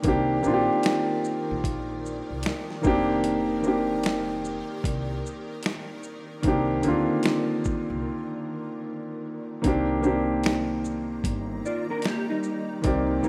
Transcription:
Already playing: ambient pad D#3 A#4 D5
0.02 upright bass C2, upright piano D#3 A#3 C4 D4, kick, closed hi-hat
0.08 upright piano G4
0.42 upright piano D#3 A#3 C4, shaker
0.46 upright bass A#1, upright piano D4 F4
0.54 upright piano G4
0.83 finger snap, closed hi-hat
0.86 finger snap, snare
1.25 shaker
1.51 upright bass A#1
1.64 kick, closed hi-hat
2.06 shaker
2.30 upright bass C2
2.43 finger snap, closed hi-hat
2.46 finger snap, snare
2.70 snare
2.82 upright bass F1, upright piano D#3 A#3 C4, ambient pad G4, kick, shaker
2.86 upright piano D4 G4
3.24 closed hi-hat
3.62 upright piano D#3 A#3 C4, shaker
3.66 upright piano D4 G4
4.03 finger snap, closed hi-hat
4.06 finger snap, snare
4.45 shaker
4.84 upright bass C2, kick, closed hi-hat
5.26 shaker
5.63 finger snap, closed hi-hat
5.66 finger snap, snare
6.03 shaker
6.42 upright bass C2, upright piano D#3 A#3 C4, kick, closed hi-hat
6.47 upright piano D4 G4
6.82 upright bass D2, upright piano D3 A#3 C4 D4, closed hi-hat, shaker
6.88 upright piano D#3 F4
7.23 finger snap, closed hi-hat
7.26 finger snap, snare
7.64 kick, shaker
7.90 upright bass C2
9.62 upright bass C2, upright piano D#3 A#3 C4, ambient pad D#3 D5 A#5, kick, closed hi-hat
9.66 upright piano D4 G4
10.01 upright piano D#3 A#3 C4, shaker
10.05 upright piano D4 G4
10.44 finger snap, closed hi-hat
10.46 finger snap, snare
10.85 shaker
11.24 upright bass G1, kick, closed hi-hat
11.65 clean electric guitar F4 D5, shaker
11.90 clean electric guitar D4 A#4
12.02 clean electric guitar G4, finger snap, snare, closed hi-hat
12.06 clean electric guitar A#3
12.29 clean electric guitar G3 D#4
12.43 shaker
12.82 upright bass C2, upright piano D#3 A#3 C4, ambient pad C6, kick, closed hi-hat
12.86 upright piano G4 D5
13.23 upright piano D#3 A#3 C4, shaker

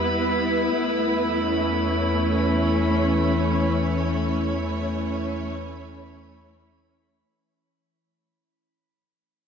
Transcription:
Already playing: sub bass E2, string section G3 B3 E4 B4, synth texture B5
0.73 sub bass E2, synth drone E3, string section A3
1.38 string section C#4
2.66 string section C#5

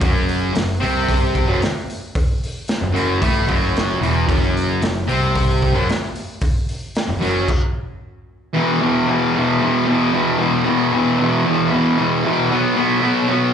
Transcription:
0.00 picked electric bass F#1, distorted electric guitar F#2 F#3, kick, open hi-hat
0.29 open hi-hat
0.54 picked electric bass F#1, distorted electric guitar F#2, snare, open hi-hat
0.80 picked electric bass C2, distorted electric guitar C3 C4, open hi-hat
1.09 kick, open hi-hat
1.35 kick, open hi-hat
1.46 picked electric bass F#1, distorted electric guitar F#2 F#3
1.62 snare, open hi-hat
1.90 open hi-hat
2.15 kick, open hi-hat
2.43 open hi-hat
2.68 snare, open hi-hat
2.81 picked electric bass F#1, distorted electric guitar F#2
2.92 picked electric bass F#1, distorted electric guitar F#2 F#3, open hi-hat
3.20 picked electric bass A1, distorted electric guitar A2 A3, kick, open hi-hat
3.46 picked electric bass F#1, distorted electric guitar F#2 F#3, kick, open hi-hat
3.76 snare, open hi-hat
4.00 picked electric bass E1, distorted electric guitar E2 E3, open hi-hat
4.27 picked electric bass F#1, distorted electric guitar F#2 F#3, kick, open hi-hat
4.57 open hi-hat
4.81 picked electric bass F#1, distorted electric guitar F#2, snare, open hi-hat
5.07 picked electric bass C2, distorted electric guitar C3 C4, open hi-hat
5.36 kick, open hi-hat
5.62 kick, open hi-hat
5.73 picked electric bass F#1, distorted electric guitar F#2 F#3
5.89 snare, open hi-hat
6.15 open hi-hat
6.41 kick, open hi-hat
6.69 open hi-hat
6.95 snare, open hi-hat
7.08 picked electric bass F#1, distorted electric guitar F#2
7.19 picked electric bass F#1, distorted electric guitar F#2 F#3, open hi-hat
7.48 kick, crash
8.54 distorted electric guitar E2 B2 E3
8.80 distorted electric guitar E2 B2 E3
9.07 distorted electric guitar E2 B2 E3
9.35 distorted electric guitar E2 B2 E3
9.61 distorted electric guitar E2 B2 E3
9.86 distorted electric guitar E2 B2 E3
10.12 distorted electric guitar E2 B2 E3
10.38 distorted electric guitar E2 B2 E3
10.65 distorted electric guitar E2 B2 E3
10.92 distorted electric guitar E2 B2 E3
11.20 distorted electric guitar E2 B2 E3
11.45 distorted electric guitar E2 B2 E3
11.71 distorted electric guitar E2 B2 E3
11.98 distorted electric guitar E2 B2 E3
12.25 distorted electric guitar E2 B2 E3
12.51 distorted electric guitar B2 F#3 B3
12.76 distorted electric guitar B2 F#3 B3
13.01 distorted electric guitar B2 F#3 B3
13.29 distorted electric guitar B2 F#3 B3

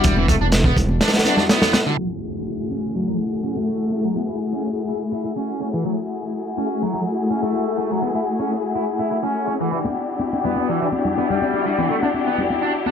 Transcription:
0.04 detuned saw bass E1, distorted electric guitar G3, kick, closed hi-hat
0.17 distorted electric guitar E3, high conga
0.28 distorted electric guitar A3, kick, closed hi-hat
0.41 detuned saw bass E1, distorted electric guitar D4
0.52 snare, closed hi-hat, high conga
0.64 distorted electric guitar B3, kick
0.77 detuned saw bass E1, kick, closed hi-hat, low conga
0.89 high conga
1.01 distorted electric guitar D4, snare, closed hi-hat
1.08 snare, closed hi-hat
1.14 string section G3 D4 E4 F#4, snare, closed hi-hat
1.19 snare, closed hi-hat
1.25 string section G3 D4 E4 F#4, distorted electric guitar D4, snare, closed hi-hat, high conga
1.37 distorted electric guitar D4, snare, low conga
1.49 distorted electric guitar B3, snare, closed hi-hat
1.62 snare, closed hi-hat, low conga
1.73 distorted electric guitar B3, snare, closed hi-hat, high conga
1.86 distorted electric guitar D3, string section G3 D4 E4 F#4
1.98 distorted electric guitar F#3, string section A3 E4 F#4 G#4, downlifter
2.71 distorted electric guitar C#4
2.95 distorted electric guitar F#3
3.08 distorted electric guitar F#3
3.43 distorted electric guitar C#4
3.56 distorted electric guitar A3
3.92 distorted electric guitar A3
4.04 distorted electric guitar F#3
4.16 distorted electric guitar B3
4.29 distorted electric guitar E4
4.53 distorted electric guitar C#4
4.89 distorted electric guitar E4
5.13 distorted electric guitar E4
5.25 distorted electric guitar E4
5.37 distorted electric guitar C#4
5.61 distorted electric guitar C#4
5.74 distorted electric guitar E3
5.85 distorted electric guitar F#3, string section A3 E4 F#4 G#4
6.58 distorted electric guitar C#4
6.82 distorted electric guitar F#3
6.95 distorted electric guitar F#3
7.31 distorted electric guitar C#4
7.43 distorted electric guitar A3
7.79 distorted electric guitar A3
7.91 distorted electric guitar F#3
8.03 distorted electric guitar B3
8.15 distorted electric guitar E4
8.39 distorted electric guitar C#4
8.75 distorted electric guitar E4
8.99 distorted electric guitar E4
9.12 distorted electric guitar E4
9.23 distorted electric guitar C#4
9.48 distorted electric guitar C#4
9.60 distorted electric guitar E3
9.72 distorted electric guitar E3, string section D4 E4 F#4 G4
9.85 muted conga, high conga
10.20 high conga
10.33 muted conga
10.45 distorted electric guitar B3, low conga
10.56 high conga
10.69 distorted electric guitar E3, muted conga
10.81 distorted electric guitar E3
10.92 high conga
11.05 low conga
11.17 distorted electric guitar B3, muted conga
11.30 distorted electric guitar G3, low conga
11.42 high conga
11.54 muted conga
11.66 distorted electric guitar G3
11.78 distorted electric guitar E3, high conga
11.90 distorted electric guitar A3
12.03 distorted electric guitar D4, muted conga
12.14 high conga
12.27 distorted electric guitar B3
12.38 muted conga, low conga
12.50 high conga
12.63 distorted electric guitar D4
12.86 distorted electric guitar D4, muted conga, high conga

